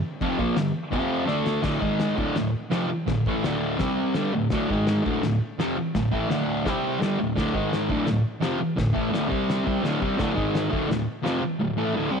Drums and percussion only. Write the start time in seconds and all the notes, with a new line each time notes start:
0.21 kick, crash
0.39 kick
0.57 snare, crash
0.93 kick, crash
1.28 snare
1.47 snare
1.64 kick, snare, crash
1.82 kick
2.00 snare, crash
2.18 kick
2.36 snare, crash
2.71 snare, crash
3.08 kick, snare, crash
3.26 kick
3.44 snare, crash
3.79 kick, snare, crash
4.14 snare, crash
4.50 kick, snare, crash
4.70 kick
4.87 snare, crash
5.06 kick
5.23 snare, crash
5.60 snare, crash
5.95 kick, snare, crash
6.13 kick
6.30 snare, crash
6.66 kick, snare, crash
7.02 snare, crash
7.37 kick, snare, crash
7.55 kick
7.73 snare, crash
7.90 kick
8.07 snare, crash
8.42 snare, crash
8.78 kick, snare, crash
8.96 kick
9.14 snare, crash
9.32 kick
9.50 snare, crash
9.67 kick
9.85 snare, crash
10.02 kick
10.19 kick, snare, crash
10.38 kick
10.55 snare, crash
10.73 kick
10.91 snare, crash
11.26 snare, crash